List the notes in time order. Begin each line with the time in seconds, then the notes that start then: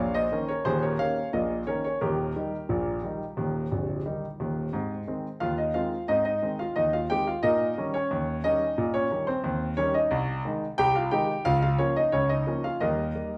Already playing: C#5 F5
0.00 A#1 A#2
0.14 C5 D#5
0.32 D#3 A#3 C#4
0.49 A#4 C#5
0.65 D#1 D#2 G#4 C5
0.82 A#4 C#5
0.99 D#3 A#3 C#4 C#5 F5
1.33 A#1 A#2 A#4 D#5
1.67 D#3 A#3 C#4 A#4 C#5
1.85 A#4 C#5
2.01 D#1 D#2 G4 A#4
2.36 D#3 G3 D#4
2.69 A#1 A#2
3.03 D#3 G3 D#4
3.37 D#1 D#2
3.71 A#0 A#1
4.06 D#3 G3 D#4
4.40 D#1 D#2
4.73 G#2 C4
5.08 D#3 G#3 C4
5.40 D#2 F4 F5
5.58 D#4 D#5
5.74 D#3 G#3 C4 F4 F5
6.08 G#2 C4 D#4 D#5
6.25 D#4 D#5
6.42 D#3 G#3 C4
6.59 F4 F5
6.76 D#2 D#4 D#5
6.93 F4 F5
7.10 D#3 G#3 C4 G4 G5
7.27 F4 F5
7.43 A#2 D#4 A#4 D#5
7.78 D#3 G3 C#4
7.94 C#4 C#5
8.11 D#2
8.44 D#3 G3 C#4 D#4 D#5
8.78 A#2
8.94 C#4 C#5
9.11 D#3 G3 C#4
9.27 C4 C5
9.44 D#2
9.77 D#3 G3 C#4 C#5
9.94 D#4 D#5
10.11 C2
10.45 D#3 G#3 D#4
10.78 C2 G4 G5
10.96 F4 F5
11.11 D#3 G#3 D#4 G4 G5
11.45 C#2 F4 F5
11.62 F4 F5
11.79 F3 A#3 C#4 C#5
11.96 D#4 D#5
12.12 C#2 C#4 C#5
12.29 D#4 D#5
12.47 F3 A#3 C#4
12.64 F4 F5
12.80 D#2 G3 D#4 A#4 D#5
13.15 G3 A#3